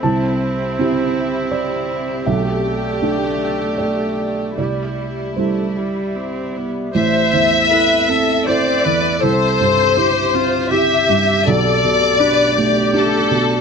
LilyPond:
<<
  \new Staff \with { instrumentName = "Violin section" } { \time 3/4 \key c \major \tempo 4 = 80 e'2. | g'2. | e'2~ e'8. r16 | e''2 d''4 |
c''2 e''4 | d''2 a'4 | }
  \new Staff \with { instrumentName = "Ambient pad" } { \time 3/4 \key c \major << { <c' e''>2. | <a d''>2. | <g e''>2. | <c' e''>2.~ |
<c' e''>2. | <a d''>2. | } \\ { g'2.~ | g'2. | g'2. | a'2. |
g'2.~ | g'2. | } >> }
  \new Staff \with { instrumentName = "Viola" } { \time 3/4 \key c \major c'2. | a2. | g4 a8 g8 c'8 b8 | c''4 b'8 a'8 c''8 b'8 |
a'4 g'8 f'8 g'4 | a'4 b'8 g'4. | }
  \new Staff \with { instrumentName = "Felt piano" } { \time 3/4 \key c \major << { a''2 d''4 | e''2 d''4 | d''4 c''4 r4 | r2. |
r2. | r2. | } \\ { c,4 <c' e' g'>2 | b,,4 <a d' g'>2 | c,4 <g e' g'>2 | a,,8 e,8 <e' a'>8 c'8 <e' a'>8 e,8 |
c,8 g,8 <e' g'>8 c'8 <e' g'>8 g,8 | b,,8 b,8 <d' g'>8 a8 <d' g'>8 b,8 | } >> }
>>